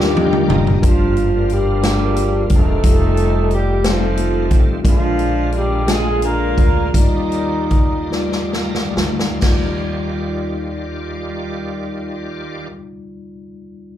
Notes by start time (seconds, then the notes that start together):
Already playing: D#2 D#3 G3 A#3 D4 F4 G4 A#4 D5
0.00 snare
0.15 D#5 G5, high tom
0.31 G5, mid tom
0.48 F#1 D#5 A#5, mid tom
0.67 floor tom
0.81 G1 G2 F3 G3 A#3 D4 D#4 F4 A#4, kick, closed hi-hat
0.85 F3 A#3 D4 F4
0.90 F4
1.17 closed hi-hat
1.49 G3 A#3 D4 G4, closed hi-hat
1.81 G3 D4 F4 G#4, snare, closed hi-hat
1.89 A#4
2.16 closed hi-hat
2.50 E1, kick, closed hi-hat
2.54 A3 C4 D#4 A4
2.83 F1 D#3 G3 A3 D#4 F4 G4, kick, closed hi-hat
2.91 A4
3.17 closed hi-hat
3.51 G3 G4, closed hi-hat
3.84 G3 A3 C4 D#4 F4 A4, snare, closed hi-hat
3.88 F3 F4
4.17 closed hi-hat
4.51 A1, kick, closed hi-hat
4.83 A#1 A#2 D3 G#3 A#3 D4 F4 A#4, kick, closed hi-hat
4.88 F3 F4
5.19 closed hi-hat
5.52 G3 G4, closed hi-hat
5.85 G#3 D4 F4 G#4, snare, closed hi-hat
5.90 G#3 G#4
6.22 A#3 D4 F4 A#4, closed hi-hat
6.58 D2, kick, closed hi-hat
6.93 D#2 D#3 G3 D#4 F4 D5, kick, closed hi-hat
6.97 D#3 G3 A#3 D#4
7.32 closed hi-hat
7.71 kick, closed hi-hat
8.10 G3 D#4 F4 D5, snare
8.32 snare
8.53 A#5, snare
8.75 snare
8.96 D2 F5, snare
9.19 snare
9.39 D#2 G3 D#4, kick, snare, crash
9.43 D#3 G3 F4 D5